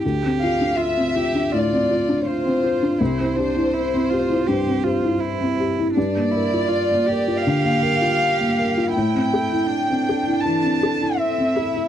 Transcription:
X:1
M:4/4
L:1/16
Q:1/4=81
K:Gdor
V:1 name="Violin section"
z2 f2 e4 d4 c4 | c12- c2 z2 | d8 f8 | g8 a4 e4 |]
V:2 name="Cello"
G4 F2 G2 F4 F4 | E2 D2 E2 F2 G2 F2 E4 | D2 E2 F2 G8- G2 | E4 D8 C2 E2 |]
V:3 name="Felt piano"
D,, C F D2 C F D A,, C F D2 C F D | C,, C G E2 C G E G,, C G E2 C G E | G,, B, B F2 B, B F D, B, B F2 B, B F | A,, C A E2 C A E E, C A E2 C A E |]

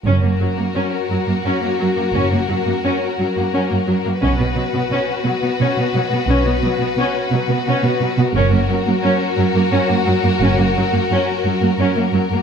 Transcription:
X:1
M:12/8
L:1/8
Q:3/8=116
K:F#
V:1 name="Violin section"
A12- | A12 | B12- | B12 |
A12- | A12 |]
V:2 name="Violin section"
F12- | F12 | F12- | F12 |
F12- | F12 |]
V:3 name="Viola section"
C A, F, A, C z F, A, C A, F, A, | C A, F, A, C z F, A, C A, F, A, | C B, F, B, C z F, B, C B, F, B, | C B, F, B, C z F, B, C B, F, B, |
C A, F, A, C z F, A, C A, F, A, | C A, F, A, C z F, A, C A, F, A, |]
V:4 name="Cello section" clef=bass
F,, F,, F,, F,, F,, z F,, F,, F,, F,, F,, F,, | F,, F,, F,, F,, F,, z F,, F,, F,, F,, F,, F,, | B,, B,, B,, B,, B,, z B,, B,, B,, B,, B,, B,, | B,, B,, B,, B,, B,, z B,, B,, B,, B,, B,, B,, |
F,, F,, F,, F,, F,, z F,, F,, F,, F,, F,, F,, | F,, F,, F,, F,, F,, z F,, F,, F,, F,, F,, F,, |]
V:5 name="Double bass section" clef=bass
F,,, z8 z3 | F,,, z8 z3 | B,,, z8 z3 | B,,, z8 z3 |
F,,, z8 z3 | F,,, z8 z3 |]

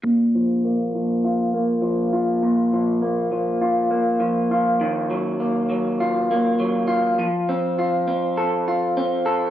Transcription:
X:1
M:4/4
L:1/8
Q:"Swing 16ths" 1/4=101
K:Eblyd
V:1 name="Clean electric guitar"
B,, F, B, F, F B, F, F | B,, F, B, F, F B, F, F | E, _G, B, G, F B, G, F | F, C F C A F C A |]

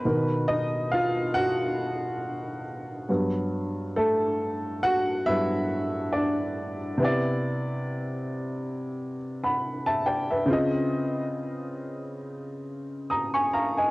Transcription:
X:1
M:4/4
L:1/16
Q:"Swing 16ths" 1/4=69
K:Clyd
V:1 name="Upright piano"
[B,B]2 [^D^d]2 [=F=f]2 [^F^f]6 z4 | z2 [A,A]4 [Ff]2 [Ee]4 [Dd]3 z | z8 z3 [fb]2 [ea] [dg] [Be]- | [Be] z8 z3 [_b_e'] [_a_d'] [=fb] [_ea] |]
V:2 name="Upright piano"
[B,,^D,^A]2 z12 [G,,F,B,]2- | [G,,F,B,]8 [G,,F,B,]2 z6 | [C,B,Ed]16 | [_D,C=F_e]12- [D,CFe]2 z2 |]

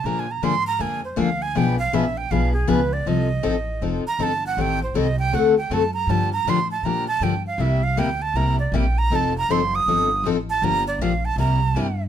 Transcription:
X:1
M:4/4
L:1/16
Q:"Swing" 1/4=159
K:Fmix
V:1 name="Flute"
(3b2 _a2 b2 c'2 b2 a2 c2 f2 a2 | g2 f2 =e2 g2 f2 ^G2 =B2 d2 | e8 z2 b2 a2 _g2 | g2 c2 e2 g2 ^f2 g2 a2 b2 |
a2 b2 c'2 a2 b2 a2 g2 f2 | =e2 f2 g2 a2 b2 d2 g2 b2 | a2 b2 c'2 e'6 z2 a2 | b2 d2 f2 a2 b6- b z |]
V:2 name="Steel-string acoustic guitar"
[D,F,B,D_A]2 z2 [D,F,B,DA] z3 [D,F,B,DA]2 z2 [D,F,B,DA] z3 | [=B,,F,=B,D^G=B]2 z2 [B,,F,B,DGB] z3 [B,,F,B,DGB]2 z2 [B,,F,B,DGB] z3 | [F,CEA]2 z2 [F,CEA] z3 [F,CEA]2 z2 [F,CEA] z3 | [E,G,CGA]2 z2 [E,G,CGA] z3 [D,A,C^FA]2 z2 [D,A,CFA] z3 |
[D,F,B,DG]2 z2 [D,F,B,DG] z3 [D,F,B,DG]2 z2 [D,F,B,DG] z3 | [C,G,B,=EG]2 z2 [C,G,B,EG] z3 [C,G,B,EG]2 z2 [C,G,B,EG] z3 | [F,CEA]2 z2 [F,CEA] z3 [F,CEA]2 z2 [F,CEA] z3 | [D,F,B,DG]2 z2 [D,F,B,DG] z3 [C,G,B,=EG]2 z2 [C,G,B,EG] z3 |]
V:3 name="Upright bass" clef=bass
B,,4 _A,,4 F,,4 D,,4 | =B,,,4 _B,,,4 =B,,,4 _D,,4 | C,,4 A,,,4 F,,,2 z2 G,,,4 | A,,,4 C,,4 D,,4 ^F,,4 |
G,,4 A,,4 B,,4 G,,4 | C,,4 D,,4 C,,4 B,,,4 | F,,,4 _G,,,4 =G,,,4 A,,,4 | G,,,4 B,,,4 C,,4 G,,4 |]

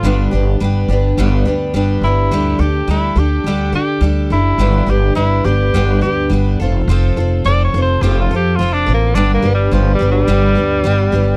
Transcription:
X:1
M:4/4
L:1/8
Q:1/4=105
K:Gmix
V:1 name="Tenor saxophone"
F z6 E- | E G E G2 G z E- | E G E G2 G z2 | z2 (3d ^c =c (3G F G (3F D _B, |
(3D _B, G, (3F, G, G,- G,4 |]
V:2 name="Twelve-string acoustic guitar"
[G,,D,G,B,DG] [G,B,DG] [G,B,DG] [G,B,DG] [G,,D,G,B,DG] [G,B,DG] [G,B,DG] [G,B,DG] | [D,G,DGA] [DGA] [G,DGA] [DGA] [D,G,DGA] [DGA] [G,DGA] [DGA] | [G,,D,G,B,DG] [G,B,DG] [G,B,DG] [G,B,DG] [G,,D,G,B,DG] [G,B,DG] [G,B,DG] [CFA] | [F,CFA] [CFA] [F,CFA] [CFA] [F,CFA] [CFA] [F,CFA] [CFA] |
[G,,D,G,B,DG] [G,B,DG] [G,B,DG] [G,B,DG] [G,,D,G,B,DG] [G,B,DG] [G,B,DG] [G,B,DG] |]
V:3 name="Upright bass" clef=bass
G,,, G,,, G,,, G,,, G,,, D,, G,,, G,,, | D,, D,, D,, D,, D,, D, D,, ^F,,, | G,,, G,,, G,,, G,,, G,,, D,, G,,, F,,, | F,,, F,,, F,,, F,,, F,,, F,, F,,, A,,, |
G,,, G,,, G,,, G,,, G,,, D,, G,,, G,,, |]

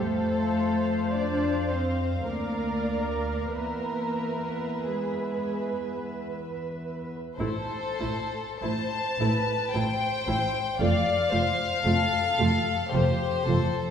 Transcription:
X:1
M:3/4
L:1/8
Q:1/4=53
K:Am
V:1 name="Violin section"
f6 | e6 | c2 a2 g2 | f4 c2 |]
V:2 name="Violin section"
A2 d c _B2 | _B2 ^G2 z2 | A2 c B c2 | d c A2 G A |]
V:3 name="Viola section"
c4 [_Bd]2 | B6 | [A,E] [A,E] [A,E] [A,E] [A,E] [A,E] | [A,F] [A,F] [A,F] [A,F] [A,F] [A,F] |]
V:4 name="Cello section" clef=bass
A,2 D C _B,2 | _B,2 ^G,2 z2 | A,, A,, A,, A,, A,, A,, | F,, F,, F,, F,, F,, F,, |]
V:5 name="Double bass section" clef=bass
F,,4 D,,2 | E,,6 | A,,, A,,, A,,, A,,, A,,, A,,, | F,,, F,,, F,,, F,,, F,,, F,,, |]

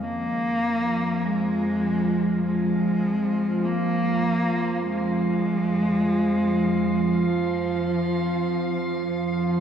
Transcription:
X:1
M:4/4
L:1/8
Q:1/4=50
K:Fm
V:1 name="Synth drone"
F8- | F8 |]
V:2 name="Cello" clef=bass
B,2 A,2 A,2 B,2 | A,4 F,3 F, |]
V:3 name="Synth drone" clef=bass
[F,,F,]8- | [F,,F,]8 |]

